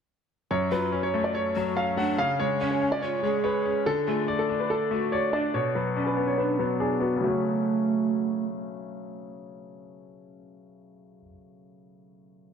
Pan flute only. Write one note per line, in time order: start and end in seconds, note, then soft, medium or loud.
0.72 0.92 F4 medium
1.56 1.95 F#4 medium
1.97 2.17 D4 medium
2.61 3.00 C#4 medium
3.03 3.22 F4 medium
3.23 3.83 G#4 medium
4.07 4.27 F4 medium
4.91 5.31 F#4 medium
5.33 5.53 D4 medium
5.96 6.36 C#4 medium
6.38 6.58 D4 medium
6.59 7.18 B3 medium
7.22 8.44 A3 medium